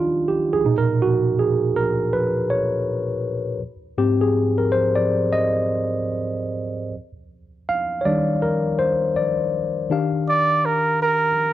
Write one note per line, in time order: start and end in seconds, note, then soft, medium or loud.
0.00 0.66 D#3 soft
0.00 0.65 G3 soft
0.00 0.66 D4 medium
0.00 0.66 D#4 medium
0.00 0.66 F4 medium
0.00 0.28 G4 medium
0.28 0.53 G4 medium
0.53 0.75 G#4 medium
0.65 3.57 A#2 medium
0.65 3.57 B2 medium
0.65 3.57 D#4 medium
0.78 1.00 A#4 medium
1.02 1.36 F#4 medium
1.39 1.77 G#4 medium
1.76 1.93 A#4 medium
2.13 2.51 B4 medium
2.50 3.57 C#5 medium
3.98 6.90 G#2 medium
3.98 6.90 C4 medium
3.98 4.09 G4 medium
4.21 4.59 G#4 medium
4.58 4.72 A#4 medium
4.72 4.96 C5 medium
4.96 5.12 D5 medium
5.33 6.02 D#5 loud
7.69 8.01 F5 medium
8.01 8.05 C#5 medium
8.05 9.12 D#3 medium
8.05 9.12 G3 medium
8.05 9.13 D4 medium
8.05 8.43 D5 medium
8.42 8.76 A#4 medium
8.79 9.17 C5 medium
9.16 9.86 D5 medium
9.90 11.30 D#3 medium
9.90 11.30 D4 medium
9.90 11.30 G4 medium
9.90 11.31 F5 medium
10.29 10.67 D5 medium
10.66 11.02 A#4 medium
11.02 11.53 A#4 medium